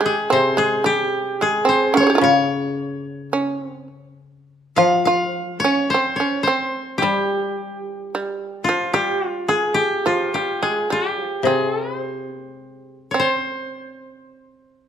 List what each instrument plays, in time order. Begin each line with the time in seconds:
Already playing: koto C3 G4
0.01 shamisen G#3
0.06 koto G#4
0.30 koto C3 C5, shamisen C4
0.57 shamisen G#3, koto G#4
0.84 shamisen G3, koto G4
1.41 shamisen G#3, koto G#4
1.65 shamisen C4, koto C5
1.94 shamisen C#4 F5, koto C#5
2.00 shamisen C5 C#5
2.07 shamisen G4 G#4
2.15 shamisen C#4 F4
2.21 koto C#3 C#5
3.33 shamisen C#4
3.65 shamisen C4
4.76 koto F3 F5, shamisen F4
5.05 shamisen F4, koto F5
5.60 koto C#5
5.65 shamisen C#4
5.90 koto C5
5.94 shamisen C4
6.16 koto C#5
6.20 shamisen C#4
6.43 koto C5
6.48 shamisen C4
6.98 koto G4
7.02 shamisen G3, koto G3
8.15 shamisen G3
8.64 koto F4
8.69 shamisen F3
8.93 shamisen G3, koto G4
9.27 koto F4
9.48 shamisen G#3, koto G#4
9.74 koto G4
10.06 shamisen F3, koto F4
10.34 shamisen G3, koto G4
10.63 shamisen G#3, koto G#4
10.90 shamisen G3, koto G4
11.23 shamisen F3
11.43 koto C3 G#4, shamisen C4
11.99 koto C5
12.57 shamisen G#3
13.11 shamisen C4, koto C#5
13.20 koto C5